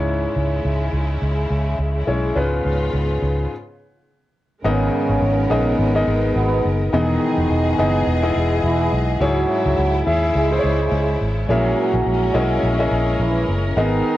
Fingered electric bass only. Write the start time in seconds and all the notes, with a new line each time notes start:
Already playing: C#2
0.36 C#2
0.65 C#2
0.93 C#2
1.22 C#2
1.50 C#2
1.79 C#2
2.07 B1
2.36 C#2
2.65 C#2
2.94 C#2
3.22 C#2
4.64 G#1
5.09 G#1
5.22 G#1
5.50 A#1
5.79 G#1
6.07 G#1
6.36 G#1
6.65 F#1
6.93 E1
7.38 E1
7.50 E1
7.79 F#1
8.07 E1
8.36 E1
8.64 E1
8.92 B1
9.20 C#2
9.66 C#2
9.78 C#2
10.07 D#2
10.35 C#2
10.64 C#2
10.92 C#2
11.21 G#1
11.49 A#1
11.94 A#1
12.06 A#1
12.35 B1
12.63 A#1
12.91 A#1
13.20 A#1
13.48 F#1
13.77 G#1